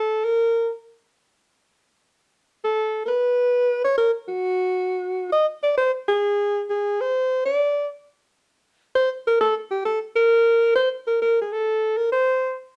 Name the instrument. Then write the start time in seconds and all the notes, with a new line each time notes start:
alto saxophone
Already playing: A4
0.25 A#4
2.65 A4
3.05 A#4 B4
3.84 C#5
3.98 A#4
4.28 F#4
5.32 D#5
5.63 D5
5.77 C5
6.08 G#4
6.70 G#4
7.01 C5
7.45 D5
8.95 C5
9.27 A#4
9.41 A4
9.71 G4
9.85 A4
10.16 A#4
10.76 C5
11.07 A#4
11.22 A#4
11.41 G#4
11.52 A4
11.97 A#4
12.12 C5